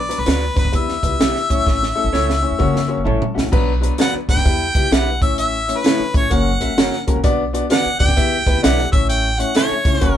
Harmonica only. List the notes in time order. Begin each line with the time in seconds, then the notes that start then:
Already playing: D5
0.20 B4
0.58 B4
0.76 E5
4.01 F#5
4.31 G5
4.93 F#5
5.22 E5
5.39 E5
5.77 B4
6.16 C#5
6.32 F#5
7.71 F#5
7.99 G5
8.63 F#5
8.92 E5
9.09 G5
9.39 F#5
9.57 C#5